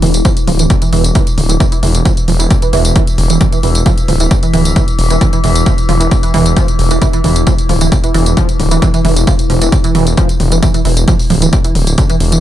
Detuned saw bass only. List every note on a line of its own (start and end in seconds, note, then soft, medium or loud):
0.02 0.21 E1 medium
0.48 0.66 D1 loud
0.93 1.11 E1 medium
1.38 1.56 D1 loud
1.83 2.01 E1 loud
2.28 2.46 E1 medium
2.73 2.91 E1 medium
3.18 3.36 E1 medium
3.63 3.82 E1 medium
4.08 4.27 D1 loud
4.54 4.72 D1 medium
4.99 5.17 E1 medium
5.44 5.62 E1 loud
5.89 6.07 E1 medium
6.34 6.52 E1 medium
6.79 6.97 E1 medium
7.24 7.43 E1 medium
7.69 7.88 D1 loud
8.15 8.33 E1 medium
8.60 8.78 D1 loud
9.05 9.23 E1 loud
9.50 9.68 E1 medium
9.95 10.13 E1 medium
10.40 10.58 E1 medium
10.85 11.03 E1 medium
11.30 11.49 D1 loud
11.75 11.94 D1 medium
12.20 12.39 E1 medium